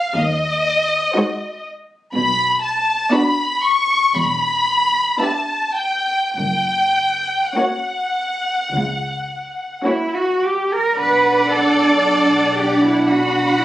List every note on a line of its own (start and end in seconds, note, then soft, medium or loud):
0.00 0.13 F5 medium
0.15 0.96 D#2 medium
0.15 0.97 D#2 medium
0.15 1.66 D#5 medium
1.15 1.91 G#3 medium
1.15 1.91 D#4 medium
1.15 1.92 F#4 medium
1.15 1.91 C5 soft
2.14 2.93 B1 medium
2.14 2.94 B2 medium
2.14 2.60 B5 medium
2.63 3.11 A5 medium
3.12 3.90 B3 medium
3.12 3.90 D4 medium
3.12 3.90 F#4 medium
3.12 3.90 D5 medium
3.12 3.63 B5 medium
3.65 4.16 C#6 medium
4.14 5.00 E1 medium
4.14 5.01 E2 medium
4.14 5.22 B5 medium
5.19 6.08 B3 medium
5.19 6.08 D4 medium
5.19 6.09 G4 soft
5.19 6.09 E5 soft
5.19 5.78 A5 medium
5.78 6.35 G5 medium
6.37 7.36 F#1 medium
6.37 7.36 F#2 medium
6.37 7.55 G5 medium
7.57 8.46 A#3 soft
7.57 8.46 C#4 soft
7.57 8.46 F#4 soft
7.57 8.47 C#5 soft
7.57 9.86 F#5 medium
8.73 9.65 C#2 soft
9.85 10.72 A#3 soft
9.85 10.72 C#4 soft
9.85 10.12 E4 medium
9.85 10.72 F#4 soft
9.85 10.72 C#5 soft
10.16 10.43 F#4 medium
10.43 10.71 G4 medium
10.72 10.98 A#4 medium
10.98 13.65 B1 medium
10.98 13.65 D4 medium
10.98 11.49 B4 medium
10.98 13.03 D5 medium
10.98 11.99 F#5 medium
11.51 12.56 A4 medium
12.01 13.04 F#5 soft
12.57 12.82 G4 medium
12.82 13.07 E4 medium
13.06 13.59 F#4 medium
13.06 13.65 F#5 medium
13.06 13.65 B5 medium
13.60 13.65 E4 medium